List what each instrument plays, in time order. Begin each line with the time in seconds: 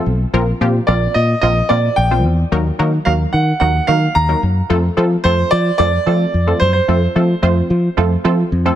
Already playing: synth pluck F3 A3 C4 F4 A4
0.06 fingered electric bass B1
0.33 fingered electric bass A#1, synth pluck F3 A#3 C4 F4 A#4
0.61 fingered electric bass A#2, synth pluck F3 A#3 C4 F4 G4
0.87 fingered electric bass A#1, synth pluck F3 A#3 C4 F4 A#4, grand piano D5
1.14 fingered electric bass A#2, grand piano D#5
1.41 fingered electric bass A#1, synth pluck F3 A#3 C4 F4 A#4, grand piano D#5
1.69 fingered electric bass A#2, synth pluck F3 A#3 C4 F4 A#4, grand piano D5
1.96 fingered electric bass A#1, grand piano G5
2.11 synth pluck F3 A#3 C4 F4 C5
2.25 fingered electric bass E2
2.52 fingered electric bass D#2, synth pluck F#3 A#3 D#4 F#4 A#4
2.79 fingered electric bass D#3, synth pluck F#3 A#3 D#4 F#4 A#4
3.05 fingered electric bass D#2, synth pluck F#3 A#3 D#4 F#4 A#4, grand piano F5
3.33 fingered electric bass D#3, grand piano F#5
3.60 fingered electric bass D#2, synth pluck F#3 A#3 D#4 F#4 A#4, grand piano F#5
3.87 fingered electric bass D#3, synth pluck F#3 A#3 D#4 F#4 A#4, grand piano F5
4.15 fingered electric bass D#2, grand piano A#5
4.29 synth pluck F#3 A#3 D#4 F#4 A#4
4.43 fingered electric bass F#2
4.70 fingered electric bass F2, synth pluck F3 A3 C4 F4 A4
4.97 synth pluck F3 A3 C4 F4 A4, fingered electric bass F3
5.24 fingered electric bass F2, synth pluck F3 A3 C4 F4 A4, grand piano C5
5.51 fingered electric bass F3, grand piano D5
5.78 fingered electric bass F2, synth pluck F3 A3 C4 F4 A4, grand piano D5
6.06 synth pluck F3 A3 C4 F4 A4, fingered electric bass F3
6.34 fingered electric bass F2
6.47 synth pluck F3 A3 C4 F4 A4
6.60 fingered electric bass F#2, grand piano C5
6.73 grand piano C5
6.88 fingered electric bass F2, synth pluck F3 A3 C4 F4 A4
7.16 synth pluck F3 A3 C4 F4 A4, fingered electric bass F3
7.42 fingered electric bass F2, synth pluck F3 A3 C4 F4 C5
7.70 fingered electric bass F3
7.97 fingered electric bass F2, synth pluck F3 A3 C4 F4 A4
8.24 synth pluck F3 A3 C4 F4 A4, fingered electric bass F3
8.52 fingered electric bass F2
8.65 synth pluck F3 A3 C4 F4 A4